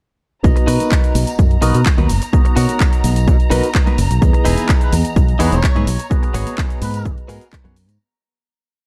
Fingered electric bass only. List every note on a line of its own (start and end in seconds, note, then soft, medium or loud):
0.44 0.53 B1 loud
0.68 0.76 B2 loud
1.15 1.23 B1 loud
1.39 1.55 F#2 loud
1.62 1.71 B1 medium
1.75 1.82 B2 loud
1.98 2.06 D#2 medium
2.09 2.18 F#1 medium
2.57 2.65 B2 loud
3.04 3.29 B1 loud
3.28 3.36 B2 medium
3.51 3.60 B1 medium
3.98 4.07 F#1 loud
4.11 4.19 B1 medium
4.22 4.31 E2 loud
4.46 4.54 E1 loud
4.93 5.01 E2 loud
5.16 5.33 B1 loud
5.40 5.49 E2 medium
5.52 5.60 E1 loud
5.76 5.84 G#2 medium
5.87 5.96 B1 medium
6.34 6.43 G#1 loud
6.82 7.07 G#2 loud
7.05 7.14 G#1 medium
7.29 7.38 G#2 loud
7.65 7.88 F#2 loud
7.88 7.96 G#2 loud